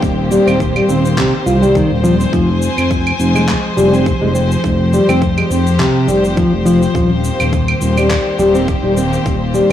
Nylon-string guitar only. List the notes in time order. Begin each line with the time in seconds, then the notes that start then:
0.31 G3
0.47 C4
0.75 G3
0.89 C4
1.17 C3
1.46 F4
1.62 G3
1.75 D#3
2.04 F3
2.33 F3
3.35 G#3
3.77 G3
3.92 C4
4.22 G#3
4.35 C4
4.93 G3
5.09 C4
5.38 G#3
5.50 C4
5.79 C3
6.08 G3
6.36 F3
6.66 F3
6.94 F3
7.97 G3
8.39 G3
8.55 C4
8.84 G3
8.97 C4
9.54 G3